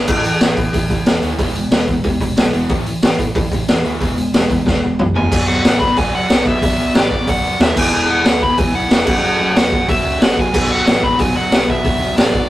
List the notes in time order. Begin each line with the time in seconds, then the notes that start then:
0.08 A1 A2 E3 A3, kick, crash
0.24 A2 E3, open hi-hat
0.41 A1 A2 E3, snare, open hi-hat
0.57 A2 E3, kick, open hi-hat
0.73 A2 E3, kick, open hi-hat
0.90 A1 A2 E3, kick, open hi-hat
1.06 E1 A2 E3, snare, open hi-hat
1.22 D#2 A2 E3 A3, open hi-hat
1.37 E1 E2 B2 E3 G#3 B3, kick, open hi-hat
1.55 E2 B2 E3 G#3, open hi-hat
1.71 E1 E2 B2 E3 G#3, snare, open hi-hat
1.87 E2 B2 E3 G#3, kick, open hi-hat
2.04 E2 B2 E3 G#3, kick, open hi-hat
2.20 E1 E2 B2 E3 G#3, kick, open hi-hat
2.36 B1 E2 B2 E3 G#3, snare, open hi-hat
2.52 E1 E2 B2 E3 G#3 B3, open hi-hat
2.69 A1 A2 E3 A3, kick, open hi-hat
2.86 A2 E3, open hi-hat
3.02 A1 A2 E3, snare, open hi-hat
3.19 A2 E3, kick, open hi-hat
3.35 A2 E3, kick, open hi-hat
3.51 A1 A2 E3, kick, open hi-hat
3.68 E1 A2 E3, snare, open hi-hat
3.84 D2 A2 E3 A3, open hi-hat
3.99 E1 E2 B2 E3 G#3 B3, kick, open hi-hat
4.16 E2 B2 E3 G#3, open hi-hat
4.32 E1 E2 B2 E3 G#3, snare, open hi-hat
4.48 E2 B2 E3 G#3, kick, open hi-hat
4.65 E2 B2 E3 G#3, kick, snare
4.82 E1 E2 B2 E3 G#3
4.98 B1 E2 B2 E3 G#3, mid tom
5.14 E1 E2 B2 E3 G#3 B3 G#5, floor tom
5.32 B1 B2 F#3 B3 D4 F#4 D5, kick, crash
5.47 B1 B2 F#3 B3 D4 F#4 D5 F#5
5.64 A1 B2 F#3 B3 D4 F#4 D5, snare, open hi-hat
5.80 B2 F#3 B3 D4 F#4 D5 B5, kick
5.97 B1 B2 F#3 B3 D4 F#4 D5 G#5, kick, open hi-hat
6.14 F#2 B2 F#3 B3 D4 F#4 D5 F#5
6.29 B1 B2 F#3 B3 D4 F#4 D5, snare, open hi-hat
6.45 B2 F#3 B3 D4 F#4 D5 E5, kick
6.62 B1 B2 F#3 B3 D4 F#4 D5, kick, open hi-hat
6.77 B1 B3 D4 F#4 D5
6.81 B2 F#3 B3
6.94 A1 B2 F#3 B3 D4 F#4 D5, snare, open hi-hat
7.11 B2 F#3 B3 D4 F#4 D5, kick
7.27 B1 B2 F#3 B3 D4 F#4 D5 F#5, kick, open hi-hat
7.43 F#2 B2 F#3 B3 D4 F#4 D5
7.59 D#2 B2 F#3 B3 D4 F#4 D5 E5, snare, open hi-hat
7.75 E1 E2 B2 E3 B3 E4 G#4 B4 G#5, kick, crash
7.92 E1 E2 B2 E3 B3 E4 G#4 B4
8.08 E1 E2 B2 E3 B3 E4 G#4 B4 F#5
8.25 D2 E2 B2 E3 B3 E4 G#4 B4, snare, open hi-hat
8.41 E2 B2 E3 B3 E4 G#4 B4 B5, kick
8.58 E1 E2 B2 E3 B3 E4 G#4 B4 G#5, kick, open hi-hat
8.73 B1 E2 B2 E3 B3 E4 G#4 B4 F#5
8.90 E1 E2 B2 E3 B3 E4 G#4 B4, snare, open hi-hat
9.06 F#1 F#2 C#3 F#3 A3 C#4 F#4 F#5, kick, crash
9.22 F#1 F#2 C#3 F#3 A3 C#4 F#4
9.39 F#1 F#2 C#3 F#3 A3 C#4 F#4
9.55 E1 F#2 C#3 F#3 A3 C#4 F#4 F#5, snare, open hi-hat
9.71 F#2 C#3 F#3 A3 C#4 F#4, kick
9.88 F#1 F#2 C#3 F#3 A3 C#4 F#4 E5, kick, open hi-hat
10.04 C#2 F#2 C#3 F#3 A3 C#4 F#4
10.20 F#1 F#2 C#3 F#3 A3 C#4 F#4 F#5, snare, open hi-hat
10.37 F#2 C#3 F#3 A3 C#4 F#4 G#5, kick
10.52 B1 B2 F#3 B3 D4 F#4, kick, crash
10.68 B1 B2 F#3 B3 D4 F#4
10.72 F#5
10.85 A1 B2 F#3 B3 D4 F#4, snare, open hi-hat
11.02 B2 F#3 B3 D4 F#4 B5, kick
11.17 B1 B2 F#3 B3 D4 F#4 G#5, kick, open hi-hat
11.35 F#2 B2 F#3 B3 D4 F#4 F#5
11.51 B1 B2 F#3 B3 D4 F#4, snare, open hi-hat
11.68 B2 F#3 B3 D4 F#4 E5, kick
11.84 B1 B2 F#3 B3 D4 F#4, kick, open hi-hat
12.00 B1 B2 F#3 B3 D4 F#4
12.17 A1 B2 F#3 B3 D4 F#4 D5, snare, open hi-hat
12.33 B2 F#3 B3 D4 F#4, kick